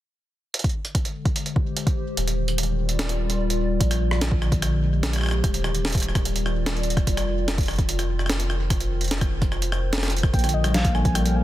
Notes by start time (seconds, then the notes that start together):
0.54 D3, closed hi-hat
0.59 closed hi-hat
0.64 kick, closed hi-hat
0.69 closed hi-hat
0.85 closed hi-hat
0.94 G#3, kick, closed hi-hat
1.05 closed hi-hat
1.21 G4
1.25 C5, kick, closed hi-hat
1.36 closed hi-hat
1.46 closed hi-hat
1.56 kick
1.77 closed hi-hat
1.87 kick, closed hi-hat
2.17 D#1 D#3, closed hi-hat
2.28 closed hi-hat
2.42 G3
2.48 closed hi-hat
2.58 closed hi-hat
2.63 F4 D5, closed hi-hat
2.89 closed hi-hat
2.99 snare, closed hi-hat
3.09 closed hi-hat
3.30 closed hi-hat
3.50 closed hi-hat
3.80 A#1 D3, kick, closed hi-hat
3.91 cross-stick, closed hi-hat
4.11 cross-stick
4.21 snare, closed hi-hat
4.31 kick
4.38 G#3, cross-stick
4.52 G4 C5, kick, closed hi-hat
4.62 cross-stick, closed hi-hat
5.03 snare, closed hi-hat
5.13 cross-stick, closed hi-hat
5.16 cross-stick
5.18 cross-stick
5.21 cross-stick
5.24 cross-stick
5.26 cross-stick
5.29 cross-stick
5.31 cross-stick
5.44 D#1 D#3, kick, cross-stick, closed hi-hat
5.54 closed hi-hat
5.64 cross-stick
5.74 G3, closed hi-hat
5.85 snare, closed hi-hat
5.87 closed hi-hat
5.90 closed hi-hat
5.92 kick, cross-stick, closed hi-hat
5.95 closed hi-hat
5.98 closed hi-hat
6.00 cross-stick, closed hi-hat
6.03 closed hi-hat
6.08 cross-stick
6.15 F4 D5, kick, cross-stick, closed hi-hat
6.25 closed hi-hat
6.36 closed hi-hat
6.46 cross-stick
6.66 cross-stick, snare, closed hi-hat
6.77 closed hi-hat
6.83 closed hi-hat
6.90 closed hi-hat
6.97 kick, cross-stick, closed hi-hat
7.07 F1, kick, closed hi-hat
7.17 cross-stick, closed hi-hat
7.48 cross-stick, snare, closed hi-hat
7.58 kick, closed hi-hat
7.61 closed hi-hat
7.63 closed hi-hat
7.66 cross-stick, closed hi-hat
7.68 closed hi-hat
7.71 closed hi-hat
7.73 closed hi-hat
7.76 kick, closed hi-hat
7.79 closed hi-hat
7.89 closed hi-hat
7.99 cross-stick, closed hi-hat
8.19 cross-stick
8.26 cross-stick, snare, closed hi-hat
8.31 C5, cross-stick
8.40 closed hi-hat
8.50 cross-stick
8.70 kick, cross-stick, closed hi-hat
8.80 closed hi-hat
9.01 closed hi-hat
9.04 closed hi-hat
9.08 snare, closed hi-hat
9.11 closed hi-hat
9.14 closed hi-hat
9.18 kick, cross-stick, closed hi-hat
9.21 closed hi-hat
9.42 kick, closed hi-hat
9.52 cross-stick
9.62 closed hi-hat
9.72 cross-stick
9.93 snare, closed hi-hat
9.98 snare
10.03 cross-stick, snare, closed hi-hat
10.08 snare, closed hi-hat
10.17 closed hi-hat
10.18 closed hi-hat
10.23 kick, cross-stick
10.34 A#1 D3 A#3 G5, kick, closed hi-hat
10.39 closed hi-hat
10.44 D3, cross-stick, closed hi-hat
10.49 closed hi-hat
10.54 F3 D#5
10.62 G3 A#4, cross-stick, closed hi-hat
10.74 F3 F5, snare, closed hi-hat
10.85 A#3, kick, closed hi-hat
10.95 D3 G#5, cross-stick
11.05 F3, kick, closed hi-hat
11.15 G3 G5, cross-stick, closed hi-hat
11.26 F3, closed hi-hat
11.35 A#3 G#5